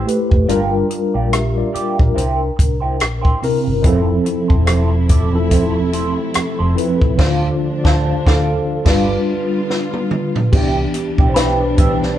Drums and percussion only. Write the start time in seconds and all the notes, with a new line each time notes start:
0.08 closed hi-hat
0.31 kick
0.49 closed hi-hat
0.91 closed hi-hat
1.33 cross-stick, closed hi-hat
1.75 closed hi-hat
1.99 kick
2.18 closed hi-hat
2.59 kick, closed hi-hat
3.00 cross-stick, closed hi-hat
3.25 kick
3.43 cross-stick, open hi-hat
3.84 kick, closed hi-hat
4.26 closed hi-hat
4.50 kick
4.67 cross-stick, closed hi-hat
5.09 kick, closed hi-hat
5.51 kick, closed hi-hat
5.93 closed hi-hat
6.34 cross-stick, closed hi-hat
6.78 closed hi-hat
7.02 kick
7.19 kick, snare, crash
7.85 kick, snare
8.27 kick, snare
8.86 kick, snare, crash
9.70 snare
9.93 high tom
10.11 mid tom
10.36 floor tom
10.53 kick, crash
10.94 closed hi-hat
11.18 kick
11.36 snare, closed hi-hat
11.78 kick, closed hi-hat
12.03 snare